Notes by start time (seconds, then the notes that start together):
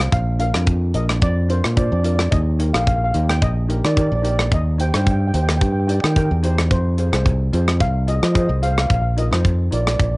Already playing: C4 F4 C5 F5
0.00 cross-stick, closed hi-hat
0.12 A#1 F5, kick, closed hi-hat
0.39 D4 F4 A#4 F5, closed hi-hat
0.54 F2 D4 F4 A#4, cross-stick, closed hi-hat
0.67 kick, closed hi-hat
0.94 A#1 D4 F4 A#4 D#5, closed hi-hat
1.09 cross-stick, closed hi-hat
1.22 F2 D5, kick, closed hi-hat
1.49 D4 F4 A#4 C5, closed hi-hat
1.64 A#2, cross-stick, closed hi-hat
1.76 D4 F4 C5 D5, kick, closed hi-hat
1.85 D5
1.92 F2 D5
2.00 D5
2.04 D4 F4 A#4 D5, closed hi-hat
2.15 D5, cross-stick, closed hi-hat
2.31 D#2 D#5, kick, closed hi-hat
2.59 D#4 G4 A#4, closed hi-hat
2.74 A#1 D#4 G4 A#4 F5, cross-stick, closed hi-hat
2.80 F5
2.87 F5, kick, closed hi-hat
2.96 F5
3.04 F5
3.11 D#2 D#4 G4 F5, closed hi-hat
3.16 A#4
3.29 G5, cross-stick, closed hi-hat
3.42 A#1 D#5, kick, closed hi-hat
3.69 D#4 G4 A#4, closed hi-hat
3.84 D#3 D5, cross-stick, closed hi-hat
3.92 D5
3.96 D#4 G4 A#4 D5, kick, closed hi-hat
4.07 D5
4.12 A#1 D5
4.22 D#4 G4 A#4 D5, closed hi-hat
4.30 D5
4.38 D5, cross-stick, closed hi-hat
4.52 D#2 D#5, kick, closed hi-hat
4.78 D#4 G4 C5 G5, closed hi-hat
4.89 G5
4.94 G2 D#4 G4 C5 G5, cross-stick, closed hi-hat
5.04 G5, kick, closed hi-hat
5.12 G5
5.20 G5
5.27 G5
5.33 D#2 D#4 G4 C5 G5, closed hi-hat
5.43 G5
5.49 G5, cross-stick, closed hi-hat
5.57 G5, closed hi-hat
5.61 G2 G5, kick
5.72 G5
5.80 G5
5.87 D#4 G4 D5 G5, closed hi-hat
5.95 G5
6.02 D#3 G5, cross-stick, closed hi-hat
6.10 G5
6.16 D#4 G4 A#4 G5, kick, closed hi-hat
6.26 G5
6.31 E2
6.43 D#4 G4 C5, closed hi-hat
6.58 cross-stick, closed hi-hat
6.71 F2 C5, kick, closed hi-hat
6.98 F4 G#4 C5, closed hi-hat
7.12 C2 F4 G#4 C5, cross-stick, closed hi-hat
7.26 kick, closed hi-hat
7.53 F2 F4 G#4 C5, closed hi-hat
7.68 cross-stick, closed hi-hat
7.80 C2 F5, kick, closed hi-hat
8.08 F4 G#4 D#5, closed hi-hat
8.15 D#5
8.23 F3 D#5, cross-stick, closed hi-hat
8.32 F4 G#4 D#5, kick, closed hi-hat
8.37 C5 D#5
8.47 C2 D#5
8.62 F4 G#4 C5 F5, closed hi-hat
8.71 F5
8.78 F5, cross-stick, closed hi-hat
8.87 A#1 F5, kick, closed hi-hat
8.94 F5
9.02 F5
9.17 D#4 F4 A#4 D#5, closed hi-hat
9.31 F2 D#4 F4 C5, cross-stick, closed hi-hat
9.45 kick, closed hi-hat
9.71 A#1 D#4 F4 A#4 D5, closed hi-hat
9.81 D5
9.87 D5, cross-stick, closed hi-hat
9.96 A#1 D5, kick, closed hi-hat
10.03 D5
10.12 D5